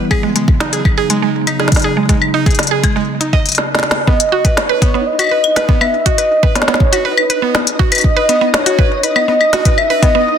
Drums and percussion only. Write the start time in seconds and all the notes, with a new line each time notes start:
0.11 kick, claves
0.36 closed hi-hat
0.48 kick
0.60 snare
0.73 closed hi-hat
0.85 kick, claves
1.10 closed hi-hat
1.47 closed hi-hat, claves
1.60 snare
1.68 snare
1.72 kick, closed hi-hat
1.74 snare, closed hi-hat
1.77 closed hi-hat
1.79 closed hi-hat
1.82 closed hi-hat
2.09 kick, closed hi-hat
2.22 claves
2.46 kick, closed hi-hat
2.51 closed hi-hat
2.55 closed hi-hat
2.59 snare, closed hi-hat
2.63 closed hi-hat
2.67 closed hi-hat
2.83 kick, closed hi-hat, claves
3.21 closed hi-hat
3.33 kick
3.46 closed hi-hat
3.49 closed hi-hat
3.52 closed hi-hat
3.55 snare, closed hi-hat
3.75 snare
3.79 snare
3.83 snare
3.91 snare
4.07 kick
4.20 closed hi-hat
4.45 kick, closed hi-hat
4.57 snare
4.82 kick, closed hi-hat
5.19 closed hi-hat, claves
5.22 claves
5.24 claves
5.29 claves
5.44 claves
5.56 snare, closed hi-hat
5.69 kick
5.81 claves
6.06 kick, closed hi-hat
6.18 closed hi-hat
6.43 kick
6.56 snare, closed hi-hat
6.62 snare
6.68 snare
6.74 snare
6.80 kick
6.93 closed hi-hat, claves
7.18 claves
7.30 closed hi-hat
7.55 snare
7.67 closed hi-hat
7.79 kick
7.92 closed hi-hat, claves
7.95 closed hi-hat, claves
7.98 closed hi-hat, claves
8.01 kick, closed hi-hat
8.29 closed hi-hat
8.54 snare
8.66 closed hi-hat
8.79 kick
9.03 closed hi-hat
9.16 claves
9.41 claves
9.53 snare, closed hi-hat
9.65 kick, closed hi-hat
9.78 claves
10.03 kick, closed hi-hat